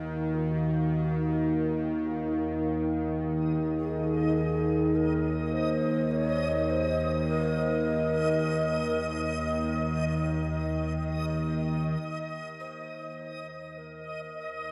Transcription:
0.00 12.00 D#2 medium
0.00 12.01 D#3 medium
0.00 12.03 D#4 medium
0.00 0.36 A#4 medium
0.00 12.03 A#4 medium
0.00 5.18 F5 medium
0.35 0.49 F4 medium
0.49 2.08 F#4 medium
2.64 12.04 D#5 medium
3.80 4.97 G#4 medium
4.84 12.03 D#5 medium
4.95 5.54 A#4 medium
5.53 6.13 C5 medium
6.11 6.72 C#5 loud
6.70 7.28 C5 medium
7.28 9.60 A#4 medium
12.01 14.72 D#2 medium
12.01 14.72 D#3 medium
12.01 14.72 D#5 medium
12.60 13.79 C5 loud
13.78 14.37 A#4 medium
14.38 14.72 A#4 loud

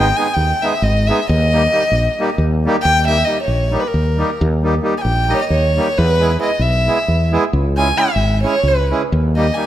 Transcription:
0.00 0.11 G#1 loud
0.00 0.18 G5 medium
0.16 0.27 G#3 medium
0.16 0.28 B3 medium
0.16 0.27 D#4 medium
0.16 0.28 G#4 medium
0.16 0.36 G#5 medium
0.34 0.52 D#2 medium
0.34 0.64 G5 medium
0.62 0.73 G#3 medium
0.62 0.73 B3 medium
0.62 0.73 D#4 medium
0.62 0.74 G#4 medium
0.62 0.85 E5 medium
0.82 1.10 G#1 medium
0.82 1.09 D#5 medium
1.07 1.19 G#3 medium
1.07 1.20 B3 medium
1.07 1.20 D#4 medium
1.07 1.20 G#4 medium
1.07 1.28 E5 medium
1.29 1.66 D#2 loud
1.29 2.34 D#5 loud
1.52 1.63 G3 medium
1.52 1.63 A#3 medium
1.52 1.63 D#4 medium
1.52 1.64 G4 medium
1.72 1.82 G3 medium
1.72 1.82 A#3 soft
1.72 1.83 D#4 medium
1.72 1.83 G4 medium
1.91 2.07 A#1 medium
2.19 2.29 G3 medium
2.19 2.29 A#3 medium
2.19 2.30 D#4 medium
2.19 2.30 G4 medium
2.38 2.66 D#2 medium
2.65 2.76 G3 medium
2.65 2.76 A#3 medium
2.65 2.76 D#4 medium
2.65 2.76 G4 loud
2.83 3.22 D#2 loud
2.83 3.05 G5 loud
3.06 3.18 G3 medium
3.06 3.18 A#3 medium
3.06 3.19 D#4 medium
3.06 3.19 G4 medium
3.06 3.26 E5 medium
3.25 3.38 G3 medium
3.25 3.38 A#3 soft
3.25 3.38 D#4 soft
3.25 3.38 G4 medium
3.25 3.43 D#5 medium
3.43 3.82 C#5 medium
3.48 3.75 A#1 medium
3.71 3.83 G3 medium
3.71 3.84 A#3 soft
3.71 3.84 D#4 soft
3.71 3.84 G4 medium
3.80 3.89 B4 medium
3.88 4.37 A#4 medium
3.94 4.22 D#2 medium
4.17 4.30 G3 medium
4.17 4.30 A#3 medium
4.17 4.30 D#4 medium
4.17 4.31 G4 medium
4.41 4.79 D#2 loud
4.63 4.74 G3 medium
4.63 4.74 A#3 medium
4.63 4.75 D#4 medium
4.63 4.75 G4 medium
4.82 4.93 G3 medium
4.82 4.94 A#3 medium
4.82 4.94 D#4 medium
4.82 4.95 G4 medium
4.98 5.32 G5 medium
4.98 5.03 G#5 medium
5.05 5.32 A#1 medium
5.29 5.40 G3 medium
5.29 5.40 A#3 medium
5.29 5.40 D#4 medium
5.29 5.41 G4 medium
5.29 5.35 D#5 medium
5.34 5.42 C#5 medium
5.41 5.45 D#5 medium
5.41 5.51 D#5 medium
5.50 5.78 D#2 medium
5.50 5.99 C#5 medium
5.76 5.88 G3 medium
5.76 5.88 A#3 medium
5.76 5.88 D#4 medium
5.76 5.89 G4 medium
5.98 6.36 E2 loud
5.98 6.41 B4 loud
6.18 6.30 G#3 medium
6.18 6.31 B3 medium
6.18 6.32 E4 medium
6.18 6.31 G#4 medium
6.38 6.50 G#3 medium
6.38 6.50 B3 soft
6.38 6.51 E4 medium
6.38 6.51 G#4 medium
6.43 6.63 D#5 medium
6.59 6.88 B1 medium
6.59 7.34 E5 medium
6.87 6.98 G#3 medium
6.87 6.98 B3 medium
6.87 6.98 E4 medium
6.87 6.99 G#4 medium
7.08 7.36 E2 medium
7.32 7.44 G#3 medium
7.32 7.44 B3 medium
7.32 7.44 E4 medium
7.32 7.45 G#4 medium
7.53 7.91 C#2 loud
7.76 7.88 G#3 medium
7.76 7.88 C#4 medium
7.76 7.89 E4 medium
7.76 7.89 G#4 medium
7.76 7.99 G#5 medium
7.97 8.08 G#3 medium
7.97 8.09 C#4 medium
7.97 8.08 E4 medium
7.97 8.09 G#4 medium
7.97 8.43 E5 medium
8.16 8.44 G#1 medium
8.43 8.55 G#3 medium
8.43 8.55 C#4 medium
8.43 8.55 E4 medium
8.43 8.55 G#4 medium
8.43 8.69 C#5 medium
8.63 8.92 C#2 medium
8.68 8.92 B4 medium
8.90 9.02 G#3 medium
8.90 9.02 C#4 medium
8.90 9.02 E4 medium
8.90 9.03 G#4 medium
9.12 9.50 D#2 medium
9.36 9.46 G3 medium
9.36 9.46 A#3 medium
9.36 9.47 D#4 medium
9.36 9.47 G4 medium
9.36 9.56 D#5 medium
9.54 9.66 G3 medium
9.54 9.66 A#3 medium
9.54 9.66 D#4 medium
9.54 9.66 G4 medium
9.54 9.66 G#5 medium

